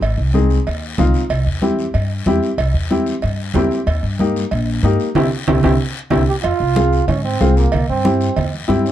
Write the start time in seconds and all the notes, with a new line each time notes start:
0.01 G#1, cowbell, high conga, long guiro
0.18 C2
0.34 C4 D#4 G#4, high conga, short guiro
0.50 short guiro
0.67 D#2, cowbell, high conga, long guiro
0.98 C2 C4 D#4 F4, high conga, low conga, short guiro
1.14 short guiro
1.30 C2, cowbell, high conga, long guiro
1.46 E2
1.62 C4 E4 G4, high conga, short guiro
1.79 short guiro
1.94 G2, cowbell, high conga, long guiro
2.26 E2 C4 E4 G4, high conga, short guiro
2.43 short guiro
2.58 C2, cowbell, high conga, long guiro
2.74 E2
2.90 C4 E4 G4, high conga, short guiro
3.06 short guiro
3.22 G2, cowbell, high conga, long guiro
3.54 E2 C4 E4 G4, high conga, low conga, low timbale, short guiro
3.71 short guiro
3.87 D#2, cowbell, high conga, long guiro
4.03 G2
4.19 A#3 D#4 G4, high conga, short guiro
4.36 short guiro
4.51 A#1, cowbell, high conga, long guiro
4.83 G2 A#3 D#4 G4, high conga, short guiro
5.00 short guiro
5.15 C2 C4 E4 G4, low conga, high timbale, long guiro
5.47 C2 C4 E4 G4, low conga, high timbale, long guiro
5.63 C2 C4 E4 G4, low conga, high timbale, long guiro
6.10 C2 C4 E4 G4, low conga, high timbale, long guiro
6.28 G4
6.43 F2 F4, cowbell, high conga, long guiro
6.60 C2
6.76 C4 F4 G#4, high conga, short guiro
6.93 short guiro
7.08 G#2 C#4, cowbell, low conga, long guiro
7.24 C4, high conga
7.40 C2 C4 F4 G#4, high conga, short guiro
7.57 A#3, short guiro
7.72 C2, cowbell, high conga, low conga, long guiro
7.89 G2 C4
8.04 C4 E4 G4, high conga, short guiro
8.21 short guiro
8.36 E2, cowbell, low conga, long guiro
8.54 high conga
8.68 G2 C4 E4 G4, high conga, short guiro
8.81 E4
8.85 C#4, short guiro